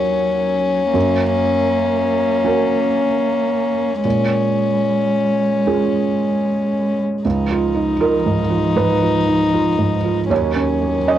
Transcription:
Already playing: D#2 F#3 C#4 F#4 A#4
0.94 F#2 A#3
2.44 C#4 F#4 A#4
4.04 A#2 G#3 C#4
5.67 C#4 F4 G#4
7.24 C#2 F3 D#4
7.50 F4
7.75 D#4
8.00 F4 A#4
8.26 G#2
8.50 F4
8.76 G#2 B4
9.02 F4
9.27 D#4
9.53 F4
9.78 G#2
10.04 F4
10.30 D#2 F#3 C#4 C#5
10.56 C#4
10.81 A#3
11.07 C#4 D#5

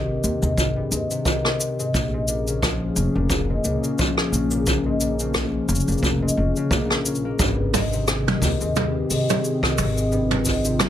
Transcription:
Already playing: G#1 D#3 C4 G4
0.24 D#2 C3, cabasa
0.42 D#2 G#2, cabasa
0.58 G#1, kick, cabasa
0.76 G2
0.91 D#2 G#2, cabasa
1.10 C3, cabasa
1.25 D#3, kick, cabasa
1.45 cross-stick
1.59 C3, cabasa
1.79 G#2, cabasa
1.93 A#1 F3 A#3 C#4 G#4, kick, cabasa
2.14 G#2
2.28 A#2, cabasa
2.47 C#3, cabasa
2.62 F3, kick, cross-stick, cabasa
2.96 F1 C#3, cabasa
3.15 F1 A#2
3.29 kick, cabasa
3.50 G#2
3.64 C#2 A#2, cabasa
3.83 C#3, cabasa
3.98 F3, kick, cabasa
4.18 cross-stick
4.32 A#1 C#3, cabasa
4.51 A#2, cabasa
4.66 kick, cabasa
4.86 G#2
5.01 A#2, cabasa
5.19 C#3, cabasa
5.34 F3, kick, cross-stick, cabasa
5.69 F1 C#3, cabasa
5.75 cabasa
5.80 cabasa
5.88 F1 A#2, cabasa
5.92 cabasa
5.98 cabasa
6.03 F1, kick, cabasa
6.22 G#2
6.28 cabasa
6.37 F1 C#3
6.56 C#3, cabasa
6.71 A#1 A#2, kick, cabasa
6.90 cross-stick
7.05 C#3, cabasa
7.15 cabasa
7.25 A#3
7.39 G#1 G2 D#3 C4 G4 G#4, kick, cabasa
7.74 G#2, kick, mid tom, open hi-hat, cabasa
7.93 C3, cabasa
8.08 cross-stick, cabasa
8.27 D#3, mid tom
8.42 D#2 C3, kick, open hi-hat, cabasa
8.61 D#2 G#2, cabasa
8.76 G2, mid tom, cabasa
9.10 C2 G#2, open hi-hat, cabasa
9.29 C3, mid tom, cabasa
9.44 cabasa
9.63 D#3, kick, cross-stick
9.78 G#1 C3, mid tom, open hi-hat, cabasa
9.96 G#2, cabasa
10.12 G2 F4, cabasa
10.31 mid tom
10.45 G#2, kick, open hi-hat, cabasa
10.65 C3, cabasa
10.79 cross-stick, mid tom, cabasa

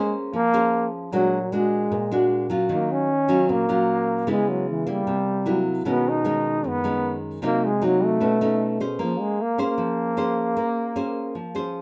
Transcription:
Already playing: G#3 A#3 C#4 G#4 C5
0.33 F3 A#3
0.54 C#4 G#4 C5
1.12 A#2 F#3 G#3 D4 F#4
1.52 G#3 D4 F#4
1.92 A#2
2.12 G#3 D4 F#4
2.50 F#3 C#4 F4
2.69 D#3
2.73 A#3
2.92 C#4
3.28 F#3 C#4 F4
3.49 A#2 A#3
3.69 F#3 C#4 F4
4.27 C#3 G#3 B3 E4
4.31 G#3
4.50 F#3
4.70 E3
4.87 G3 A#3 E4
5.07 C3
5.46 F#3 A#3 E4
5.85 B2 D#3 G#3 B3 C#4
6.09 D#4
6.24 D#3 G#3 C#4
6.64 F#2 B3
6.84 D#3 G#3 C#4
7.42 C3 F#3 A#3 D#4
7.65 G#3
7.82 F#3 A#3 D#4
8.04 A3
8.20 B2 A3 C#4 D#4
8.41 A3 C#4 D#4
8.80 C#4 G#4 C5
8.99 F3 A#3
9.21 G#3
9.42 A#3
9.58 A#3 C#4 G#4 C5
9.78 F3
10.17 C#4 G#4 C5
10.57 A#3
10.96 C#4 G#4 C5
11.35 F3
11.55 C#4 G#4 C5

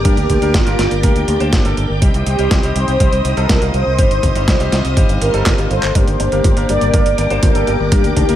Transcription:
Already playing: A#4 D5 G5 D6
0.05 G2 A#3 D4 G4 A#4, kick, closed hi-hat
0.17 D2, closed hi-hat
0.30 D2, kick, closed hi-hat
0.42 D2 A#3 D4 G4 A#4, closed hi-hat
0.54 G1 F4, kick, snare, closed hi-hat
0.66 G1 A#3 D4 G4 A#4, closed hi-hat
0.79 G1, snare, closed hi-hat
0.91 G1, closed hi-hat
1.03 D2 A#3 D4 G4 A#4, kick, closed hi-hat
1.16 D2, closed hi-hat
1.28 D2, closed hi-hat
1.40 D2 A#3 D4 G4 C5, closed hi-hat
1.53 G1, kick, snare, closed hi-hat
1.65 G1 A#3 D4 G4 A4, closed hi-hat
1.77 G1, closed hi-hat
1.90 G1
2.02 C2 G3 C4 D#4 G4 C5 D#5 D#6, kick, closed hi-hat
2.14 C2, closed hi-hat
2.26 C2 G4, closed hi-hat
2.39 C2 G3 C4 D#4 G4, closed hi-hat
2.51 C2, kick, snare, closed hi-hat
2.63 C2 G3 C4 D#4 G4, closed hi-hat
2.76 C2 C5, closed hi-hat
2.88 C2, closed hi-hat
3.00 C2 G3 C4 D#4 G4, kick, closed hi-hat
3.12 C2, closed hi-hat
3.25 C2, closed hi-hat
3.37 C2 G3 C4 D#4 A4 A#4, closed hi-hat
3.49 C2, kick, snare, closed hi-hat
3.62 C2 G3 C4 D#4 F4, closed hi-hat
3.74 C2 C5, closed hi-hat
3.86 C2
3.98 G1 G3 C4 D#4 G4 F5, kick, closed hi-hat
4.11 G1, closed hi-hat
4.23 G1, kick, closed hi-hat
4.35 G1 G3 C4 D#4 G4, closed hi-hat
4.48 C2, kick, snare, closed hi-hat
4.60 C2 G3 C4 D#4 G4, closed hi-hat
4.72 C2, snare, closed hi-hat
4.85 C2, closed hi-hat
4.97 G1 G3 C4 D#4 G4, kick, closed hi-hat
5.09 G1, closed hi-hat
5.21 G1 G4 A#4, closed hi-hat
5.34 G1 G3 C4 D#4 A4, closed hi-hat
5.46 G1, kick, snare, clap, closed hi-hat
5.58 G1 G3 C4 D#4 F4, closed hi-hat
5.71 G1 A4 C5, closed hi-hat
5.83 G1, clap, closed hi-hat
5.95 G1 G3 A#3 D4 G4 A#4 D5 G5 D6, kick, closed hi-hat, mid tom
6.08 G1, closed hi-hat
6.20 G1 D4, closed hi-hat
6.32 G1 A#3 D4 G4 A#4, closed hi-hat
6.44 G1 F3, kick, closed hi-hat, mid tom
6.57 G1 A#3 D4 G4 A#4, closed hi-hat
6.69 G1 G3 A#4 D5, closed hi-hat
6.81 G1 G2, closed hi-hat
6.94 G1 G3 A#3 D4 G4 A#4, kick, closed hi-hat, mid tom
7.06 G1, closed hi-hat
7.18 G1 D4, closed hi-hat
7.30 G1 A#3 D4 G4 C5, closed hi-hat
7.43 G1 F3 G4 A#4, kick, closed hi-hat, mid tom
7.55 G1 A#3 D4 G4 A4, closed hi-hat
7.67 G1 G3, closed hi-hat
7.80 G1 G2
7.92 G2 G3 A#3 D4 G4 A#4, kick, closed hi-hat, mid tom
8.04 D2, closed hi-hat
8.16 D2 D4 D#4 G4, kick, closed hi-hat
8.29 D2 A#3 D4 G4 A#4, closed hi-hat

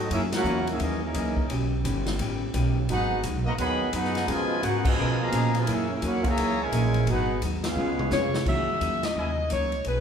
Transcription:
0.09 F#2 E3 A#3 C#4 D#4 E4 G#4 E5, ride
0.13 A#4
0.32 A#3 C#4 E4 F#4 A#4 C#5 F#5, snare, ride
0.44 E2 F#2 E3 A#3 D#4, hi-hat pedal
0.67 A#3 C#4 E4 G#4 A#4 E5, ride
0.79 D#2 F#2 E3 A#3 C#4 D#4 G#4 A#4 D#5, ride
1.03 E3 A#3 C#4 D#4 G#4 A#4 D#5
1.14 C#2 F#2 E3 A#3 D#4, hi-hat pedal, ride
1.37 kick
1.48 B1 D#3 B3 C#4 G4, ride
1.84 G1 D#3 B3 C#4 G4, hi-hat pedal, ride
2.06 snare, ride
2.18 A1 D#3 B3 C#4 G4, ride
2.54 B1 D#3 B3 C#4 G4, hi-hat pedal, ride
2.88 G#1 G#2 F#3 B3 D#4 F#4 G#4 B4 F#5, ride
3.23 C#2 G#2 F#3 B3 D#4, hi-hat pedal, ride
3.35 B1
3.45 G#1 A#3 F#4 B4 D#5 A#5
3.57 D#2 G#2 D#3 F#3 B3 D#4 G#4 D#5 F#5 B5, ride
3.93 F#2 G#2 F#3 B3 D#4 F#4 G#4 B4 F#5, hi-hat pedal, ride
4.05 snare
4.15 snare, ride
4.27 B2 C#3 F3 G#3 B3 F4 A#4 B4 D#5 G#5, ride
4.62 G#2 C#3 B3 D#4 F4 F#4 G#4 A#4 B4 F#5, hi-hat pedal, ride
4.85 B2 F3 G#3 F4 B4 D#5 G#5, kick, crash
4.97 B2 C#3 B3 F4 A#4
5.19 B2 F3 A#3 G#4 D#5 F5 A#5
5.32 A#2 C#3 B3 F4 A#4, hi-hat pedal, ride
5.55 B2 F3 G#3 F4 B4 D#5 G#5, ride
5.66 F#2 E3 A#3 C#4 E4, ride
5.70 C#4 D#4 G#4 A#4 E5
5.89 A#3 C#4 E4
5.93 C#4 G#4 A#4 E5
6.01 E2 F#2 E3 A#3 C#4 D#4 E4 F#4 A#4 C#5 F#5, hi-hat pedal, ride
6.24 C#3 E3 A#3 G#4 C#5 E5 A#5, kick, ride
6.37 C#2 F#2 E3 A#3 D#4, ride
6.59 C#3 E3 G#3 E4 A#4 C#5 G#5
6.71 A#1 F#2 E3 A#3 D#4, hi-hat pedal, ride
6.94 ride
7.06 G#1 G#2 F#3 B3 D#4 F#4 G#4 B4, ride
7.10 F#5
7.41 D#2 G#2 F#3 B3 D#4, hi-hat pedal, ride
7.64 G#3 B3 C#4 F4 G#4 F5, snare, ride
7.68 B4
7.75 C#2 C#3 G#3 B3 F4
7.99 mid tom
8.10 F2 C#3 G#3 B3 F4 C#5, snare, hi-hat pedal
8.34 snare
8.45 F#2 D#3 E3 G#3 A#3 D#4 F#4 E5, kick, crash
8.80 E2 F#2 E3 A#3 D#4, hi-hat pedal, ride
9.03 D#5, snare, ride
9.14 D#2 F#2 E3 A#3 D#4 E4 A#4 D#5 G#5
9.49 C#2 F#2 E3 A#3 D#4 C#5, hi-hat pedal, ride
9.72 ride
9.84 B1 B2 A3 D#4 G#4 B4, ride

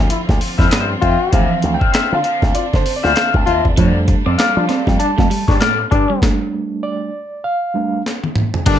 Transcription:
Already playing: D3 F3 C4 F4
0.08 E4, muted clean electric guitar stroke, closed hi-hat
0.27 D2, muted clean electric guitar stroke, kick, snare
0.41 open hi-hat
0.58 F2 E4 F4 C5 E5, kick, snare
0.70 G2 F4 C5 E5, snare, closed hi-hat
0.89 muted clean electric guitar stroke
1.01 F2 F4 C5 E5 G5, kick, closed hi-hat
1.19 muted clean electric guitar stroke
1.31 D2 E3 F3 C4 D4 F4 C5 E5 F5, kick, closed hi-hat
1.62 D2, muted clean electric guitar stroke, closed hi-hat
1.74 G5
1.80 F4 C5 E5, kick
1.92 F4 C5 E5, muted slap bass stroke, snare, closed hi-hat
2.11 D3 F4 F5, muted clean electric guitar stroke
2.23 F4 C5 F5, closed hi-hat
2.42 D2, muted clean electric guitar stroke, kick, snare
2.54 F4 D5, muted clean electric guitar stroke, closed hi-hat
2.73 D3 C5, muted clean electric guitar stroke, kick, snare
2.86 open hi-hat
2.96 D5
3.03 D2 F4 C5 E5, snare
3.15 F4 C5 E5 F5, snare, closed hi-hat
3.34 D2 A5, muted clean electric guitar stroke, kick
3.46 D#2 F4 C5 E5, closed hi-hat
3.65 E2, muted clean electric guitar stroke, kick
3.77 F2 F3 G3 A3 D4 F4 A4 D5, kick, closed hi-hat
4.08 muted clean electric guitar stroke, kick, closed hi-hat
4.26 F2 C4 F4 A4 D5
4.38 F4 A4 D5 F5, muted clean electric guitar stroke, muted slap bass stroke, snare, closed hi-hat
4.57 F3 D4, muted clean electric guitar stroke
4.69 C4 F4 A4 D5, snare, closed hi-hat
4.87 F2 G3, muted clean electric guitar stroke, kick, snare
4.99 D4 A5, muted clean electric guitar stroke, closed hi-hat
5.18 F2 A3, muted clean electric guitar stroke, kick, snare
5.30 G3, open hi-hat
5.48 G2 D4 F4 A4 D5, kick, snare
5.60 A2 A3 F4 A4 D5, snare, closed hi-hat
5.79 muted clean electric guitar stroke
5.90 G2 D4 F4 A4 D5, muted clean electric guitar stroke, kick, closed hi-hat
6.09 G3, muted clean electric guitar stroke
6.21 G3 A3 D4, kick, snare
6.83 D5
7.44 F5
7.74 G3 A3 D4
8.06 snare
8.24 high tom
8.36 mid tom
8.54 floor tom
8.66 G1 G2 D3 G3 A3 A#3 D4 F4 A4, kick, closed hi-hat, crash

